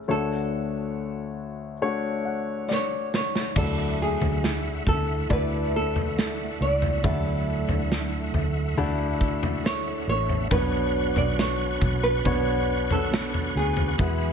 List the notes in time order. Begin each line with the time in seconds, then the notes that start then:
Already playing: A3 G#4
0.08 D2 D3 A3 D4 F#4 A4 C#5
1.82 A3 D4 F#4 C#5
2.25 F#5
2.69 D5, snare
2.73 C#5
3.14 C#5, snare
3.35 snare
3.55 D2 D3 F#3 A3 D4 E4 F#4 A4 D5 E5 F#5, kick, floor tom, crash
4.02 G#4
4.21 D2, floor tom
4.43 A3 D4 E4, snare
4.86 D2 A4, kick, floor tom
5.29 D2 A3 D4 E4 F#4 A4 D5, kick, floor tom
5.33 B4
5.76 A4
5.96 floor tom
6.16 A3 D4 E4 A4, snare
6.60 C#2 D5
6.82 floor tom
7.02 D2 D3 F#3 A3 D4 E4 F#4 E5, kick, floor tom
7.07 E4 A4
7.69 D2, floor tom
7.92 snare
8.34 D2, floor tom
8.77 D2 A3 D4 E4 F#4 A4, floor tom
9.21 kick
9.43 floor tom
9.64 A3 D4 E4 A4 C#5, snare
10.07 A1 C#5
10.29 floor tom
10.50 B1 B2 F#3 B3 D4 F#4 B4 C#5 F#5 C#6, kick, floor tom
10.54 F#4 C#5
11.16 B1 D5, floor tom
11.39 C#5, snare
11.81 B1, kick, floor tom
12.04 B4
12.24 B1 B3 D4 F#4 C#5, kick, floor tom
12.90 A4, floor tom
13.11 B3 D4 F#4 C#5, snare
13.34 floor tom
13.55 D2 G#4
13.77 floor tom
13.97 E2 E3 F#3 G#3 B3 E4 F#4 G#4 B4 E5 B5, kick, floor tom